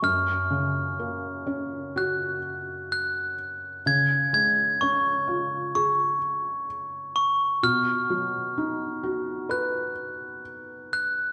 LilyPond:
<<
  \new Staff \with { instrumentName = "Glockenspiel" } { \time 4/4 \key fis \major \tempo 4 = 64 eis'''2 fis'''4 fis'''4 | gis'''8 gis'''8 cis'''4 cis'''4. cis'''8 | eis'''2 fis'''4. fis'''8 | }
  \new Staff \with { instrumentName = "Felt piano" } { \time 4/4 \key fis \major fis,8 cis8 ais8 cis'8 fis'2 | cis8 gis8 cis'8 eis'8 gis'2 | b,8 fis8 dis'8 fis'8 b'2 | }
>>